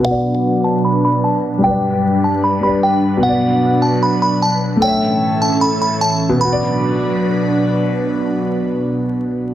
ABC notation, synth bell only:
X:1
M:4/4
L:1/8
Q:1/4=151
K:Bm
V:1 name="Synth bell"
f3 a b b a z | g3 a b b g z | f3 a b b a z | g3 a b b a z |
b6 z2 | z8 |]